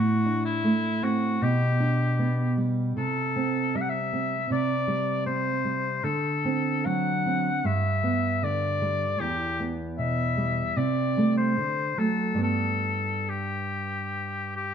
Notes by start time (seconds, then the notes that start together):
Already playing: A2 F#4
0.26 D4
0.45 E4
0.64 A3
1.03 C4 F#4
1.42 B2 G4
1.80 D4
2.19 B3
2.57 G3
2.97 C3 A4
3.36 C4
3.75 G3 E5
3.81 F#5
3.89 E5
4.13 C4
4.50 C3 D5
4.88 G3
5.26 C4 C5
5.65 G3
6.04 D3 A4
6.45 C4
6.86 F#3 F#5
7.26 C4
7.64 G2 E5
8.03 B3
8.43 D3 D5
8.82 G3
9.20 E2 G4
9.60 B3
9.98 B2 E5
10.37 G3
10.76 C3 D5
11.17 G3 A3
11.37 C5
11.57 D3
11.98 F#3 A3 A4
12.34 G2 G3 B3
12.43 A4
13.29 G4
14.56 G4